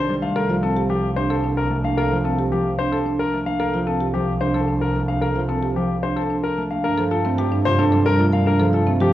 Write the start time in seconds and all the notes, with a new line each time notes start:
Already playing: C2 D#3 A3 C5
0.08 G3
0.22 A3 F5
0.35 C2 A4 A#4
0.49 F3 F4
0.63 C4 A4
0.76 G4
0.89 F3 G4
1.17 D4 C5
1.30 A4
1.44 D4
1.57 A#4
1.70 A3
1.84 A#3 D4 F5
1.97 A4 A#4
2.11 F3 F4
2.24 C4 A4
2.39 G4
2.52 F3 G4
2.79 D4 C5
2.92 A4
3.06 D4
3.19 A#4
3.33 A3
3.46 A#3 D4 F5
3.60 C2 A4 A#4
3.74 F3 F4
3.87 C4 A4
4.01 G4
4.14 F3 G4
4.41 D4 C5
4.54 A4
4.68 D4
4.81 A#4
4.96 A3
5.08 A#3 D4 F5
5.21 A4 A#4
5.36 F3 F4
5.49 C4 A4
5.63 G4
5.76 F3 G4
6.03 D4 C5
6.16 A4
6.30 D4
6.44 A#4
6.58 A3
6.71 A#3 D4 F5
6.84 G2 D4 A#4
6.98 F3 A4
7.11 F4 A4
7.25 A3 C4
7.38 F3 G4
7.52 D4
7.65 C3 F4 C5
7.79 D4 A4
7.92 G3 A4
8.06 D4 A#4
8.19 A3 F4
8.33 A#3 A#4 F5
8.46 D4 A#4
8.60 F3 A4
8.73 F4 A4
8.87 A3 C4
9.00 F3 G4